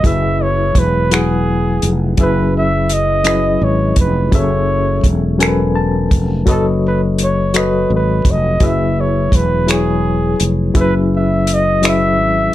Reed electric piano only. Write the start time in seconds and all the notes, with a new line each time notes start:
0.03 F#3 E4 G#4 B4 E5
1.10 F#3 E4 G#4 B4 F#5
2.17 F#3 C#4 E4 G#4 B4 E5
3.24 F#3 C#4 E4 G#4 B4 D#5
4.32 F#3 C#4 G#4 A4 E5
5.39 F#3 C#4 A4 A#4 G#5
5.48 B4
5.75 A5
6.46 F#3 F#4 A4 B4 C#5 D#5
7.54 F#3 F#4 A4 B4 C#5 D#5
8.60 F#3 E4 G#4 B4 E5
9.66 F#3 E4 G#4 B4 C#5
10.74 F#3 C#4 E4 G#4 B4 E5
11.81 F#3 C#4 E4 G#4 B4 E5